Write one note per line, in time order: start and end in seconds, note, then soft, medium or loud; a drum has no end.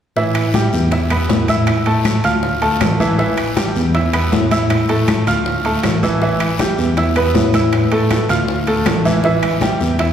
0.16 0.69 A2 medium
0.16 0.47 E3 medium
0.16 0.48 E4 medium
0.16 0.48 E5 medium
0.16 high bongo medium
0.16 high conga soft
0.16 long guiro medium
0.35 high conga soft
0.35 high timbale medium
0.35 claves medium
0.54 0.85 G3 medium
0.54 0.85 G4 medium
0.54 0.86 G5 medium
0.54 high bongo medium
0.54 high conga loud
0.54 high timbale medium
0.54 low timbale medium
0.54 short guiro medium
0.73 1.26 E2 medium
0.73 high conga soft
0.73 short guiro medium
0.91 1.07 E4 medium
0.91 1.08 E5 medium
0.91 1.08 E6 medium
0.91 high bongo medium
0.91 high conga soft
0.91 high timbale medium
0.91 long guiro medium
1.10 1.42 B3 medium
1.10 1.42 B4 medium
1.10 1.42 B5 medium
1.10 high conga soft
1.10 high timbale medium
1.10 claves medium
1.29 2.19 A2 medium
1.29 high bongo medium
1.29 low bongo medium
1.29 high conga medium
1.29 low timbale medium
1.29 short guiro medium
1.48 1.80 E4 medium
1.48 1.80 E5 medium
1.48 1.80 E6 medium
1.48 high conga medium
1.48 high timbale medium
1.48 short guiro medium
1.67 high bongo medium
1.67 high conga soft
1.67 high timbale medium
1.67 long guiro medium
1.67 claves medium
1.86 2.18 A3 medium
1.86 2.18 A4 medium
1.86 2.18 A5 medium
1.86 high bongo soft
1.86 high conga soft
1.86 high timbale medium
2.05 high bongo soft
2.05 high conga medium
2.05 high timbale medium
2.05 low timbale medium
2.05 short guiro medium
2.05 claves medium
2.24 2.77 D2 medium
2.24 2.55 F4 medium
2.24 2.55 F5 medium
2.24 2.56 F6 medium
2.24 high bongo soft
2.24 high conga soft
2.24 high timbale medium
2.24 short guiro medium
2.43 high bongo medium
2.43 high conga soft
2.43 long guiro medium
2.62 2.93 A3 medium
2.62 2.93 A4 medium
2.62 2.93 A5 medium
2.62 high bongo soft
2.62 high conga soft
2.62 high timbale medium
2.81 3.70 A1 medium
2.81 high bongo medium
2.81 low bongo medium
2.81 high conga medium
2.81 high timbale loud
2.81 low timbale medium
2.81 short guiro medium
2.81 claves medium
3.00 3.16 E3 medium
3.00 3.16 E4 medium
3.00 3.16 E5 medium
3.00 high conga medium
3.00 short guiro medium
3.19 3.50 E3 medium
3.19 3.50 E4 medium
3.19 3.50 E5 medium
3.19 high bongo medium
3.19 high conga soft
3.19 long guiro medium
3.38 high conga soft
3.38 high timbale medium
3.38 claves medium
3.56 3.88 G3 medium
3.56 3.88 G4 medium
3.56 3.88 G5 medium
3.56 high bongo medium
3.56 high conga medium
3.56 high timbale medium
3.56 low timbale medium
3.56 short guiro medium
3.76 4.29 E2 loud
3.76 high conga soft
3.76 short guiro medium
3.95 4.10 E4 medium
3.95 4.10 E5 medium
3.95 4.10 E6 medium
3.95 high bongo medium
3.95 high conga soft
3.95 high timbale medium
3.95 long guiro medium
4.13 4.44 B3 medium
4.13 4.45 B4 medium
4.13 4.45 B5 medium
4.13 high conga soft
4.13 high timbale medium
4.13 claves medium
4.32 5.21 A2 loud
4.32 high bongo medium
4.32 low bongo medium
4.32 high conga medium
4.32 low timbale medium
4.32 short guiro medium
4.51 4.82 E4 medium
4.51 4.83 E5 medium
4.51 4.83 E6 medium
4.51 high conga medium
4.51 high timbale medium
4.51 short guiro medium
4.70 high bongo medium
4.70 high conga soft
4.70 high timbale medium
4.70 long guiro medium
4.70 claves medium
4.89 5.20 A3 medium
4.89 5.20 A4 medium
4.89 5.21 A5 medium
4.89 high bongo soft
4.89 high conga soft
4.89 high timbale medium
5.08 high bongo medium
5.08 high conga medium
5.08 high timbale medium
5.08 low timbale medium
5.08 short guiro medium
5.08 claves medium
5.27 5.80 D2 medium
5.27 5.58 F4 medium
5.27 5.58 F5 medium
5.27 5.59 F6 medium
5.27 high bongo soft
5.27 high conga soft
5.27 high timbale medium
5.27 short guiro medium
5.46 high bongo medium
5.46 high conga soft
5.46 long guiro medium
5.65 5.96 A3 medium
5.65 5.96 A4 medium
5.65 5.97 A5 medium
5.65 high bongo soft
5.65 high conga soft
5.65 high timbale medium
5.83 6.73 A1 medium
5.83 high bongo medium
5.83 low bongo medium
5.83 high conga medium
5.83 high timbale medium
5.83 low timbale medium
5.83 short guiro medium
5.83 claves medium
6.03 6.18 E3 medium
6.03 6.19 E4 medium
6.03 6.19 E5 medium
6.03 high conga medium
6.03 short guiro medium
6.22 6.53 E3 medium
6.22 6.53 E4 medium
6.22 6.53 E5 medium
6.22 high bongo medium
6.22 high conga soft
6.22 long guiro medium
6.40 high conga soft
6.40 high timbale medium
6.40 claves medium
6.59 6.91 G3 medium
6.59 6.91 G4 medium
6.59 6.91 G5 medium
6.59 high bongo medium
6.59 high conga loud
6.59 high timbale medium
6.59 low timbale medium
6.59 short guiro medium
6.78 7.31 E2 medium
6.78 high conga soft
6.78 short guiro medium
6.97 7.13 E4 medium
6.97 7.13 E5 medium
6.97 7.13 E6 medium
6.97 high bongo medium
6.97 high conga soft
6.97 high timbale medium
6.97 long guiro medium
7.16 7.48 B3 medium
7.16 7.48 B4 medium
7.16 7.48 B5 medium
7.16 high conga soft
7.16 high timbale medium
7.16 claves medium
7.35 8.24 A2 medium
7.35 high bongo medium
7.35 low bongo medium
7.35 high conga medium
7.35 low timbale medium
7.35 short guiro medium
7.54 7.85 E4 medium
7.54 7.86 E5 medium
7.54 7.86 E6 medium
7.54 high conga medium
7.54 high timbale medium
7.54 short guiro medium
7.73 high bongo medium
7.73 high conga soft
7.73 high timbale medium
7.73 long guiro medium
7.73 claves medium
7.92 8.23 A3 medium
7.92 8.23 A4 medium
7.92 8.23 A5 medium
7.92 high bongo soft
7.92 high conga soft
7.92 high timbale medium
8.11 high bongo medium
8.11 high conga medium
8.11 high timbale medium
8.11 low timbale medium
8.11 short guiro medium
8.11 claves medium
8.29 8.82 D2 medium
8.29 8.61 F4 medium
8.29 8.61 F5 medium
8.29 8.61 F6 medium
8.29 high bongo soft
8.29 high conga soft
8.29 high timbale medium
8.29 short guiro medium
8.48 high bongo medium
8.48 high conga soft
8.48 long guiro medium
8.67 8.99 A3 medium
8.67 8.99 A4 medium
8.67 8.99 A5 medium
8.67 high bongo soft
8.67 high conga soft
8.67 high timbale medium
8.86 9.75 A1 medium
8.86 high bongo medium
8.86 low bongo medium
8.86 high conga medium
8.86 high timbale medium
8.86 low timbale medium
8.86 short guiro medium
8.86 claves medium
9.05 9.21 E3 medium
9.05 9.21 E4 medium
9.05 9.21 E5 medium
9.05 high conga medium
9.05 short guiro medium
9.24 9.55 E3 medium
9.24 9.56 E4 medium
9.24 9.56 E5 medium
9.24 high bongo medium
9.24 high conga soft
9.24 long guiro medium
9.43 high conga soft
9.43 high timbale medium
9.43 claves medium
9.61 9.93 G3 medium
9.61 9.93 G4 medium
9.61 9.93 G5 medium
9.61 high bongo medium
9.61 high conga medium
9.61 high timbale medium
9.61 low timbale medium
9.61 short guiro medium
9.80 10.13 E2 medium
9.80 high conga soft
9.80 short guiro medium
9.99 10.13 E4 medium
9.99 10.13 E5 medium
9.99 10.13 E6 medium
9.99 high bongo medium
9.99 high conga soft
9.99 high timbale medium
9.99 long guiro medium